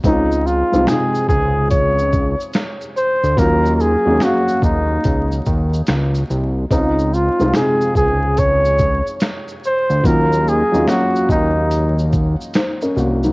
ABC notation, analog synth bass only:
X:1
M:4/4
L:1/16
Q:"Swing 16ths" 1/4=72
K:Ebdor
V:1 name="Analog synth bass" clef=bass
D,,3 C,, z2 D,,4- D,, z4 =D,, | E,,3 E,, z2 E,,2 D,,2 E,,2 D,,2 C,,2 | D,,3 C,, z2 D,,4- D,, z4 =D,, | E,,3 E,, z2 E,,4- E,, z3 C,,2 |]